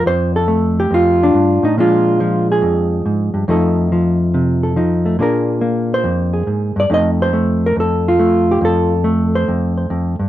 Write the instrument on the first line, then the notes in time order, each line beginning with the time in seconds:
hollow-body jazz guitar
Already playing: F3
0.06 F2 C5
0.36 A4
0.48 A3
0.80 G4
0.91 F2 F4
1.23 D4
1.34 G2
1.63 A2 D#4
1.78 A#2 F3 G#3 D4 F4
2.20 F3
2.52 G#4
2.62 F2
3.06 G#2
3.34 G2
3.48 F2 F3 A3 D#4 A4
3.92 F3
4.34 C3
4.63 A4
4.76 F3 D#4
5.06 A3
5.19 A#2 A#3 D4 G#4 A#4
5.61 A#3
5.94 C5
6.04 F2
6.33 G#4
6.47 G#2
6.76 G2 D5
6.90 F2 A3 D#4
6.94 D#5
7.22 C5
7.33 A3
7.66 A#4
7.76 F2 A4
8.08 F4
8.19 A3
8.51 G4
8.61 F2 A4
9.04 A3
9.35 C5
9.48 F2
9.77 C5
9.90 F2
10.19 G2